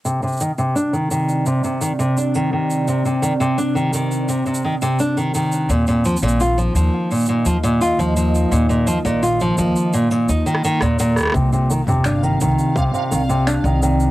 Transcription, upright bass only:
X:1
M:4/4
L:1/16
Q:1/4=85
K:Cm
V:1 name="Upright bass" clef=bass
z16 | z16 | E,,3 B,,,3 E,, z3 E,,3 E,,3 | E,,3 B,,,3 E,, z3 E,, z2 E,,3 |
C,,3 G,,,3 C,, z3 C,,3 C,,3 |]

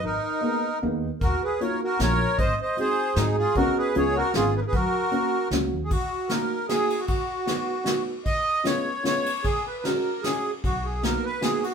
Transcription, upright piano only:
X:1
M:3/4
L:1/8
Q:"Swing" 1/4=153
K:F#
V:1 name="Upright piano"
z2 [G,A,B,D] z [G,A,B,D] z | z2 [F,A,DE] z [F,A,DE] z | z2 [G,^B,DF] z [G,B,DF] z | [G,B,CF]2 [G,B,CE] z [G,B,CE] z |
z2 [F,A,CF] z [F,A,CF] z | [K:Ebm] z2 [G,B,EG] z [G,B,EG] z | z2 [^F,=B,^D^F] z [F,B,DF] z | z2 [A,CDF] z [A,CDF] z |
z2 [G,A,DG] z [G,A,DG] z | z2 [^A,=B,^D^F] z [A,B,DF] z |]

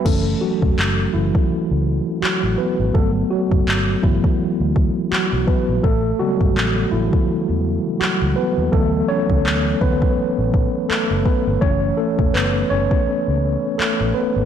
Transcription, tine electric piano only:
X:1
M:4/4
L:1/8
Q:"Swing 16ths" 1/4=83
K:F#phr
V:1 name="Tine electric piano"
A [F,F]2 [E,E]3 [F,F] [B,B] | A [F,F]2 [E,E]3 [F,F] [B,B] | [A,A] [F,F]2 [E,E]3 [F,F] [B,B] | [A,A] [Cc]2 [B,B]3 [A,A] [B,B] |
c [A,A] [B,B] [Cc]2 z [A,A] [B,B] |]
V:2 name="Tine electric piano"
[E,A,C] z6 z | [F,A,B,]3 [F,A,B,] z4 | z [C,G,B,]3 z4 | [E,F,B,] z6 z |
[E,A,C] z6 z |]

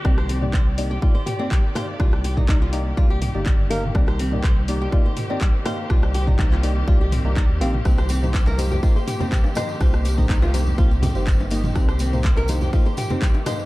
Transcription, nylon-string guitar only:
X:1
M:4/4
L:1/16
Q:"Swing 16ths" 1/4=123
K:Eb
V:1 name="Nylon-string guitar"
C c C z c z2 G F c G C G z c z | F z G E E F z2 F G G z3 B z | C c C z c z2 G F c G C G z c z | F z G E E F z2 F G C z E z C z |
C c C z c B z G F c G C G z c z | F z G E E F z2 F G G z4 z | C c C z c B z G F c G C G z c z |]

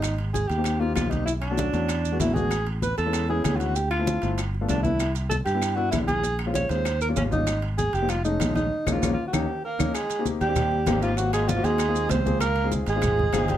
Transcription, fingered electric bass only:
X:1
M:4/4
L:1/8
Q:1/4=194
K:Ab
V:1 name="Fingered electric bass" clef=bass
A,,,3 E,,3 _C,,2- | _C,,3 _F,,3 =A,,,2- | =A,,,3 =E,,3 =D,,2- | =D,,3 G,,,3 C,,2- |
C,,3 G,,3 B,,,2- | B,,,3 E,,3 A,,,2- | A,,,3 F,,,3 B,,,2 | z B,,, B,,, z E,, z2 E,, |
z3 E,,3 A,,,2- | A,,,3 E,,3 D,,2- | D,,3 A,,,3 G,,,2 |]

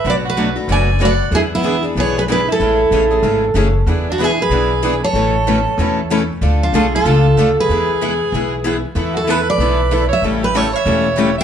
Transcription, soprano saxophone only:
X:1
M:4/4
L:1/8
Q:"Swing" 1/4=189
K:Emix
V:1 name="Soprano saxophone"
B F2 z d2 d2 | E B,2 z G G G E- | E6 z2 | z D E G4 A- |
A6- A z | z D =F F4 G- | G6- G z | z F E B4 c |
z =G A c4 e |]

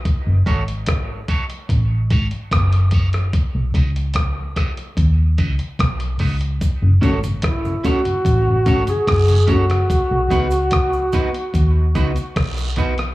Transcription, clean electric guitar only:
X:1
M:4/4
L:1/8
Q:1/4=73
K:F#dor
V:1 name="Clean electric guitar"
z [CFAc] z [CFAc] z [CFAc] z [CFAc] | z [DFBd] z [DFBd] z [DFBd] z [DFBd] | z [CFAc] z [CFAc] z [CFAc] z [CFAc] | z [B,DFB] z [B,DFB] z [B,DFB] z [B,DFB] |]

